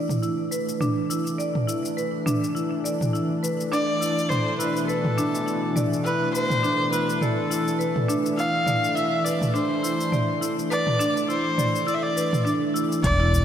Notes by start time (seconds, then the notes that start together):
Already playing: E3 A3 D4
0.09 mid tom, shaker
0.22 E4, shaker
0.51 B4, shaker
0.69 shaker
0.81 D4, mid tom, shaker
1.10 E4, shaker
1.27 shaker
1.38 D5, shaker
1.55 mid tom
1.67 E4, shaker
1.85 shaker
1.97 B4, shaker
2.26 D4, mid tom, shaker
2.44 shaker
2.55 E4, shaker
2.84 D5, shaker
3.01 mid tom, shaker
3.13 E4, shaker
3.43 B4, shaker
3.61 shaker
3.72 D4 D5, shaker
4.01 E4, shaker
4.16 B2, shaker
4.29 C5 D5, mid tom, shaker
4.58 E4 B4, shaker
4.77 shaker
4.87 A4 B4, shaker
5.05 mid tom
5.18 D4, shaker
5.35 shaker
5.46 E4, shaker
5.76 D5, mid tom, shaker
5.93 shaker
6.04 E4 B4, shaker
6.34 B4 C5, shaker
6.50 mid tom, shaker
6.63 D4, shaker
6.92 E4 B4, shaker
7.10 shaker
7.21 A4 D5, mid tom, shaker
7.50 E4, shaker
7.68 shaker
7.79 B4, shaker
7.96 mid tom
8.08 D4, shaker
8.26 shaker
8.37 E4 F5, shaker
8.66 D5, mid tom, shaker
8.84 shaker
8.96 E4 E5, shaker
9.25 B4 D5, shaker
9.42 mid tom, shaker
9.54 D4 C5, shaker
9.83 E4, shaker
10.01 shaker
10.12 D5, mid tom, shaker
10.41 E4, shaker
10.59 shaker
10.70 B4 D5, shaker
10.87 mid tom
10.99 D4, shaker
11.17 shaker
11.28 E4 C5, shaker
11.58 D5, mid tom, shaker
11.75 shaker
11.87 E4 D5, shaker
11.95 E5
12.03 D5
12.16 B4, shaker
12.33 mid tom, shaker
12.45 D4, shaker
12.74 E4, shaker
12.92 shaker
13.03 E1 D5, kick, closed hi-hat, shaker
13.20 E4
13.33 udu, shaker